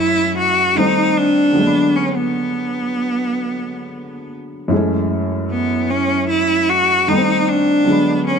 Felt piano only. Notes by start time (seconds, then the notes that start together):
Already playing: F#2 E3 G#3 A3 C#4
0.75 D#3 G3 A3 C4
1.52 D3 F#3
1.57 G#3 A#3
1.66 B3
4.68 F#2 E3 G#3
4.74 A3 C#4
7.07 D#3 G3 A3 B3
7.18 C4
7.84 D3 F#3
7.89 G#3 B3